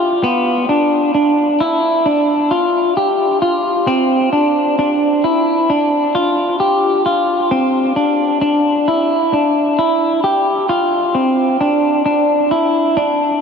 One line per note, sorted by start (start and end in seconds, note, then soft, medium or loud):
0.00 0.24 F4 medium
0.24 0.69 B3 medium
0.69 1.13 D4 medium
1.14 1.60 D4 medium
1.60 2.06 E4 medium
2.06 2.51 D4 medium
2.51 2.97 F4 medium
2.97 3.42 G4 medium
3.42 3.88 F4 medium
3.87 4.32 C4 medium
4.33 4.78 D4 medium
4.79 5.24 D4 medium
5.24 5.70 E4 medium
5.70 6.15 D4 medium
6.15 6.60 F4 medium
6.60 7.05 G4 medium
7.06 7.51 F4 medium
7.51 7.96 C4 medium
7.96 8.40 D4 medium
8.41 8.87 D4 medium
8.88 9.33 E4 medium
9.33 9.79 D4 medium
9.79 10.23 E4 medium
10.24 10.69 G4 medium
10.69 11.15 F4 medium
11.15 11.60 C4 medium
11.61 12.04 D4 medium
12.06 12.51 D4 medium
12.51 12.97 E4 medium
12.97 13.41 D4 medium